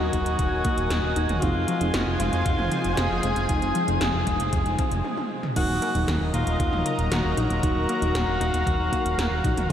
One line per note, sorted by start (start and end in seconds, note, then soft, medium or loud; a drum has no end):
0.00 0.11 D#1 medium
0.00 0.12 D#3 medium
0.00 1.38 F#3 medium
0.00 1.39 F#3 medium
0.00 1.39 A#3 medium
0.00 1.39 D#4 medium
0.00 1.44 F#4 loud
0.00 1.38 A#4 medium
0.00 5.01 D#5 medium
0.00 1.40 G#5 medium
0.13 0.24 D#1 loud
0.13 0.38 D#4 loud
0.13 kick medium
0.13 closed hi-hat medium
0.26 0.37 D#1 medium
0.26 closed hi-hat medium
0.39 0.50 D#1 loud
0.39 0.51 D#3 medium
0.39 kick loud
0.39 closed hi-hat medium
0.52 0.63 D#1 medium
0.65 0.85 A#3 loud
0.65 kick loud
0.65 closed hi-hat medium
0.78 0.89 D#1 medium
0.78 closed hi-hat medium
0.90 1.01 D#1 loud
0.90 1.15 D#3 medium
0.90 snare loud
0.90 closed hi-hat medium
1.03 1.14 D#1 medium
1.16 1.27 D#1 loud
1.16 1.41 D#4 loud
1.16 closed hi-hat medium
1.29 1.40 D#1 medium
1.29 closed hi-hat medium
1.29 mid tom medium
1.42 1.53 F1 loud
1.42 1.54 C3 medium
1.42 1.78 F3 medium
1.42 1.78 G#3 medium
1.42 1.78 C4 medium
1.42 1.78 D#4 medium
1.42 2.10 F4 loud
1.42 5.01 F4 medium
1.42 1.78 G#4 loud
1.42 5.01 C5 medium
1.42 5.01 G#5 medium
1.42 kick loud
1.42 closed hi-hat medium
1.55 1.66 F1 medium
1.68 1.88 F3 loud
1.68 closed hi-hat medium
1.81 1.92 F1 medium
1.81 3.46 F3 medium
1.81 3.46 G#3 medium
1.81 3.46 C4 medium
1.81 3.46 D#4 medium
1.81 3.46 G#4 loud
1.81 closed hi-hat medium
1.94 2.05 F1 loud
1.94 2.19 C3 medium
1.94 snare loud
1.94 closed hi-hat medium
2.07 2.18 F1 medium
2.20 2.31 F1 loud
2.20 2.44 G#3 loud
2.20 2.99 F4 loud
2.20 closed hi-hat medium
2.33 2.44 F1 medium
2.33 closed hi-hat soft
2.46 2.57 F1 loud
2.46 2.57 C3 medium
2.46 kick loud
2.46 closed hi-hat medium
2.59 2.70 F1 medium
2.59 mid tom medium
2.72 2.91 F3 loud
2.72 closed hi-hat medium
2.84 2.96 F1 medium
2.84 closed hi-hat medium
2.97 3.09 F1 loud
2.97 3.22 C3 medium
2.97 5.04 G#4 loud
2.97 snare loud
2.97 closed hi-hat medium
3.10 3.21 F1 medium
3.23 3.34 F1 loud
3.23 3.48 G#3 loud
3.23 closed hi-hat medium
3.36 3.47 F1 medium
3.36 closed hi-hat medium
3.49 3.60 F1 loud
3.49 3.61 C3 medium
3.49 3.85 F3 medium
3.49 3.85 G#3 medium
3.49 3.85 C4 medium
3.49 3.85 D#4 medium
3.49 3.85 G#4 loud
3.49 kick loud
3.49 closed hi-hat medium
3.62 3.73 F1 medium
3.62 closed hi-hat soft
3.75 3.95 F3 loud
3.75 closed hi-hat medium
3.88 3.99 F1 medium
3.88 5.04 F3 medium
3.88 5.04 G#3 medium
3.88 5.04 C4 medium
3.88 5.04 D#4 medium
3.88 5.04 G#4 medium
3.88 closed hi-hat medium
4.01 4.12 F1 loud
4.01 4.26 C3 medium
4.01 snare loud
4.01 closed hi-hat medium
4.14 4.25 F1 medium
4.27 4.38 F1 loud
4.27 4.51 G#3 loud
4.27 kick medium
4.27 closed hi-hat medium
4.40 4.51 F1 medium
4.40 closed hi-hat soft
4.53 4.64 F1 loud
4.53 4.65 C3 medium
4.53 kick loud
4.53 closed hi-hat medium
4.66 4.77 F1 medium
4.66 closed hi-hat soft
4.79 4.98 F3 loud
4.79 kick loud
4.79 closed hi-hat medium
4.91 5.03 F1 medium
4.91 closed hi-hat medium
5.05 high tom medium
5.17 high tom medium
5.43 mid tom medium
5.56 5.67 D#1 loud
5.56 5.68 D#3 medium
5.56 5.92 F#3 medium
5.56 9.66 F#3 medium
5.56 5.92 A#3 medium
5.56 5.92 D#4 loud
5.56 6.24 F#4 loud
5.56 9.66 A#4 medium
5.56 7.61 D#5 medium
5.56 9.66 A#5 loud
5.56 kick loud
5.56 closed hi-hat medium
5.56 crash loud
5.69 5.80 D#1 medium
5.82 6.02 A#3 loud
5.82 closed hi-hat medium
5.95 6.06 D#1 medium
5.95 7.60 F#3 loud
5.95 7.60 A#3 medium
5.95 7.60 D#4 loud
5.95 closed hi-hat medium
6.08 6.19 D#1 loud
6.08 6.32 D#3 medium
6.08 snare loud
6.08 closed hi-hat medium
6.21 6.32 D#1 medium
6.34 6.45 D#1 loud
6.34 6.58 D#4 loud
6.34 7.01 F4 loud
6.34 closed hi-hat medium
6.47 6.58 D#1 medium
6.47 closed hi-hat medium
6.60 6.71 D#1 loud
6.60 6.71 D#3 medium
6.60 kick loud
6.60 closed hi-hat medium
6.73 6.84 D#1 medium
6.73 mid tom loud
6.85 7.05 A#3 loud
6.85 closed hi-hat medium
6.99 7.09 D#1 medium
6.99 closed hi-hat medium
7.11 7.22 D#1 loud
7.11 7.36 D#3 medium
7.11 9.72 F#4 loud
7.11 snare loud
7.11 closed hi-hat medium
7.24 7.35 D#1 medium
7.37 7.48 A#1 loud
7.37 7.62 D#4 loud
7.37 closed hi-hat medium
7.50 7.61 D#1 medium
7.50 closed hi-hat medium
7.63 7.74 D#1 loud
7.63 7.75 D#3 medium
7.63 7.99 F#3 medium
7.63 7.99 A#3 medium
7.63 7.99 D#4 medium
7.63 9.68 F5 medium
7.63 kick loud
7.63 closed hi-hat medium
7.76 7.87 D#1 medium
7.89 8.09 A#3 loud
7.89 closed hi-hat medium
8.02 8.13 D#1 medium
8.02 9.67 F#3 medium
8.02 9.67 A#3 medium
8.02 9.67 D#4 medium
8.02 closed hi-hat medium
8.15 8.26 D#1 loud
8.15 8.39 D#3 medium
8.15 snare loud
8.15 closed hi-hat medium
8.28 8.39 D#1 medium
8.41 8.52 D#1 medium
8.41 8.65 D#4 loud
8.41 closed hi-hat medium
8.54 8.65 D#1 medium
8.54 closed hi-hat medium
8.67 8.78 D#1 loud
8.67 8.78 D#3 medium
8.67 kick loud
8.67 closed hi-hat medium
8.79 8.90 D#1 medium
8.92 9.12 A#3 loud
8.92 kick medium
8.92 closed hi-hat medium
9.05 9.16 D#1 medium
9.05 closed hi-hat medium
9.18 9.29 D#1 loud
9.18 9.43 D#3 medium
9.18 snare loud
9.18 closed hi-hat medium
9.31 9.42 D#1 medium
9.44 9.55 A#1 loud
9.44 9.69 D#4 loud
9.44 kick loud
9.44 closed hi-hat medium
9.57 9.68 D#1 medium
9.57 closed hi-hat medium
9.57 mid tom loud